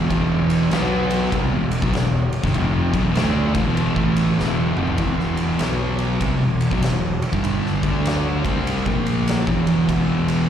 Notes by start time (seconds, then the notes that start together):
0.10 E1 E2 B2 E3, kick, ride
0.50 ride
0.71 B1 B2 F#3 B3, snare, ride
1.11 ride
1.32 C2 C3 G3, kick, ride
1.52 E1 E2 B2
1.71 ride
1.82 B1 B2 F#3, kick
1.93 E1 E2 B2, snare, ride
2.33 ride
2.43 G1 G2 D3, kick, snare
2.54 F1 F2 C3 F3, kick, ride
2.93 B1 B2 F#3, kick, ride
3.04 E1 E2 B2
3.15 D2 D3 A3 D4, snare, ride
3.54 A1 A2 E3, kick, ride
3.65 E1 E2 B2 E3
3.77 ride
3.95 A1 A2 E3 A3, kick
4.17 ride
4.38 E1 E2 B2 E3, snare
4.77 F1 F2 C3 F3, mid tom
4.87 floor tom
4.98 E1 E2 B2 E3, kick, ride
5.20 snare
5.37 ride
5.59 B1 B2 F#3 B3, snare, ride
5.99 ride
6.20 C2 C3 G3, kick, ride
6.40 E1 E2 B2
6.61 ride
6.71 B1 B2 F#3, kick
6.82 E1 E2 B2, snare, ride
7.22 ride
7.32 G1 G2 D3 G3, kick
7.44 kick, ride
7.66 snare
7.83 D2 D3 A3 D4, kick, ride
8.05 snare, ride
8.45 C2 C3 G3 C4, kick, ride
8.67 ride
8.86 A#1 A#2 F3 A#3, kick
9.07 ride
9.28 snare, ride
9.47 E1 E2 B2 E3, kick
9.67 ride
9.89 E1 E2 B2 E3, kick, ride
10.28 ride